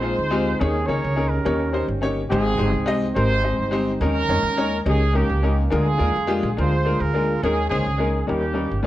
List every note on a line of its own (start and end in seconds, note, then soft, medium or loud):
0.00 0.12 A#1 loud
0.00 0.13 G#3 medium
0.00 0.14 C4 medium
0.00 0.56 D#4 medium
0.00 0.13 D#4 medium
0.00 0.14 F4 medium
0.00 0.56 G#4 medium
0.00 0.60 C5 loud
0.00 0.14 C5 medium
0.18 0.54 D2 medium
0.30 0.49 G#3 medium
0.30 0.49 C4 medium
0.30 0.49 D#4 medium
0.30 0.49 F4 medium
0.30 0.49 G4 loud
0.60 0.84 D#2 loud
0.60 1.27 D#3 medium
0.60 0.74 A#3 medium
0.60 0.74 C#4 medium
0.60 1.30 C#4 medium
0.60 0.74 D#4 medium
0.60 0.87 G#4 loud
0.60 0.74 G#4 medium
0.60 0.75 C#5 medium
0.87 1.01 C#2 medium
0.87 0.99 A#3 medium
0.87 0.99 C#4 medium
0.87 0.99 D#4 medium
0.87 1.41 G#4 medium
0.87 0.99 G#4 medium
0.87 1.29 A#4 medium
0.87 1.30 C#5 loud
0.87 1.00 C#5 medium
1.04 1.40 C#2 medium
1.16 1.34 A#3 medium
1.16 1.34 C#4 medium
1.16 1.34 D#4 medium
1.16 1.34 G#4 medium
1.16 1.35 A#4 medium
1.30 2.12 C#4 medium
1.30 2.12 G4 medium
1.30 1.88 A#4 loud
1.45 1.82 D#2 loud
1.45 2.11 D#3 medium
1.45 1.59 A#3 medium
1.45 1.59 C#4 medium
1.45 1.59 D#4 medium
1.45 1.59 G4 medium
1.45 1.59 C#5 medium
1.73 1.84 A#3 medium
1.73 1.84 C#4 medium
1.73 1.85 D#4 medium
1.73 1.85 G4 medium
1.73 1.85 C5 medium
1.88 2.24 G1 medium
2.01 2.19 A#3 medium
2.01 2.19 C#4 medium
2.01 2.19 D#4 medium
2.01 2.20 G4 medium
2.01 2.20 C#5 loud
2.30 2.55 G#1 loud
2.30 2.97 G#2 medium
2.30 2.44 G#3 medium
2.30 2.44 C4 medium
2.30 3.12 C4 medium
2.30 3.12 D#4 medium
2.30 2.45 D#4 medium
2.30 2.45 G4 medium
2.30 2.96 G#4 loud
2.30 2.45 C5 medium
2.57 2.71 G1 loud
2.57 2.69 G#3 medium
2.57 2.69 C4 medium
2.57 2.69 D#4 medium
2.57 2.70 G4 medium
2.57 2.70 C5 medium
2.73 3.10 C2 medium
2.86 3.04 G#3 loud
2.86 3.04 C4 medium
2.86 3.05 D#4 medium
2.86 3.05 G4 medium
2.86 3.05 D#5 loud
3.15 3.52 G#1 loud
3.15 3.29 G#3 medium
3.15 3.30 C4 medium
3.15 3.30 D#4 medium
3.15 3.97 D#4 medium
3.15 3.30 G4 medium
3.15 3.97 G4 medium
3.15 3.30 A#4 medium
3.15 3.82 C5 loud
3.43 3.54 G#3 medium
3.43 3.55 C4 medium
3.43 3.55 D#4 medium
3.43 3.55 G4 medium
3.43 3.55 D#5 medium
3.59 3.95 G1 medium
3.71 3.89 G#3 medium
3.71 3.90 C4 medium
3.71 3.90 D#4 medium
3.71 3.90 G4 medium
3.71 3.90 C5 loud
4.00 4.24 D#2 loud
4.00 4.68 D#3 medium
4.00 4.15 G#3 medium
4.00 4.15 A#3 medium
4.00 4.15 C#4 medium
4.00 4.83 C#4 medium
4.00 4.15 D#4 medium
4.00 4.82 A#4 loud
4.00 4.15 A#4 medium
4.29 4.41 F2 loud
4.29 4.40 G#3 medium
4.29 4.40 A#3 medium
4.29 4.40 C#4 medium
4.29 4.41 D#4 medium
4.29 4.41 C#5 medium
4.43 4.79 D#2 medium
4.57 4.75 G#3 medium
4.57 4.75 A#3 medium
4.57 4.75 C#4 medium
4.57 4.75 D#4 medium
4.57 4.75 C#5 loud
4.85 5.22 C#2 loud
4.85 5.00 G#3 medium
4.85 5.00 A#3 medium
4.85 5.00 C#4 medium
4.85 5.14 C#4 medium
4.85 5.00 D#4 medium
4.85 5.00 G4 medium
4.85 5.15 G#4 loud
5.13 5.25 G#3 medium
5.13 5.25 A#3 medium
5.13 5.68 A#3 medium
5.13 5.25 C#4 medium
5.13 5.68 C#4 medium
5.13 5.26 D#4 medium
5.13 5.57 G4 loud
5.13 5.26 A#4 medium
5.29 5.65 C#2 medium
5.42 5.60 G#3 medium
5.42 5.60 A#3 medium
5.42 5.61 C#4 medium
5.42 5.61 D#4 medium
5.42 5.61 A#4 medium
5.70 5.95 D2 loud
5.70 6.37 D3 medium
5.70 5.85 G#3 medium
5.70 5.85 A#3 medium
5.70 5.85 D4 medium
5.70 5.85 F4 medium
5.70 6.53 F4 medium
5.70 6.54 G#4 loud
5.70 5.86 A#4 loud
5.97 6.13 D#2 medium
5.97 6.10 G#3 medium
5.97 6.10 A#3 medium
5.97 6.10 D4 medium
5.97 6.10 F4 medium
5.97 6.11 A#4 medium
6.16 6.39 F2 medium
6.27 6.45 G#3 loud
6.27 6.45 A#3 medium
6.27 6.46 D4 medium
6.27 6.46 F4 medium
6.27 6.46 G4 loud
6.43 6.55 A#1 loud
6.57 6.94 D2 loud
6.57 6.71 G#3 medium
6.57 6.71 A#3 medium
6.57 6.71 D4 medium
6.57 6.71 F4 medium
6.57 6.99 F4 medium
6.57 7.39 G#4 medium
6.57 6.72 A#4 medium
6.57 7.01 C5 loud
6.85 6.96 G#3 medium
6.85 6.96 A#3 medium
6.85 6.96 D4 medium
6.85 6.97 F4 medium
6.85 6.97 A#4 medium
7.00 7.36 D2 medium
7.00 7.40 F4 medium
7.00 7.43 A#4 medium
7.14 7.31 G#3 medium
7.14 7.31 A#3 medium
7.14 7.32 D4 medium
7.14 7.32 F4 medium
7.14 7.32 A#4 medium
7.42 7.67 D#2 loud
7.42 8.10 D#3 medium
7.42 7.57 G#3 medium
7.42 7.57 A#3 medium
7.42 7.69 C#4 medium
7.42 7.57 C#4 medium
7.42 7.57 D#4 medium
7.42 7.68 G#4 loud
7.42 7.58 A#4 medium
7.70 7.84 C#2 medium
7.70 7.81 G#3 medium
7.70 7.82 A#3 medium
7.70 8.24 C#4 medium
7.70 7.82 C#4 medium
7.70 7.82 D#4 medium
7.70 8.24 G#4 loud
7.70 7.82 C5 medium
7.86 8.22 C#2 medium
7.98 8.16 G#3 medium
7.98 8.17 A#3 medium
7.98 8.17 C#4 medium
7.98 8.17 D#4 medium
7.98 8.17 A#4 medium
8.27 8.65 D#2 loud
8.27 8.87 D#3 medium
8.27 8.42 G3 medium
8.27 8.42 A#3 medium
8.27 8.87 A#3 medium
8.27 8.42 C#4 medium
8.27 8.87 C#4 medium
8.27 8.42 D#4 medium
8.27 8.87 G4 medium
8.27 8.42 A#4 medium
8.54 8.66 G3 medium
8.54 8.66 A#3 medium
8.54 8.66 C#4 medium
8.54 8.66 D#4 medium
8.54 8.67 A#4 medium
8.72 8.87 G1 medium
8.83 8.87 G3 medium
8.83 8.87 A#3 medium